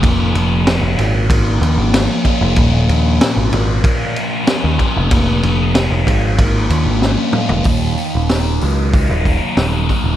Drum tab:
RD |x-x-x-x-x-x-x-x-|x-x-x-x-x-x-x-x-|x-x-x-x-x-x-----|----------------|
HH |----------------|----------------|----------------|o-o-o-o-o-o-o-o-|
SD |----o-------o---|----o-------o---|----o-------o---|----o-------o---|
T2 |----------------|----------------|--------------o-|----------------|
FT |----------------|----------------|---------------o|----------------|
BD |o-------o-----o-|o-------o-----o-|o-----o-o-------|o-------o-o---o-|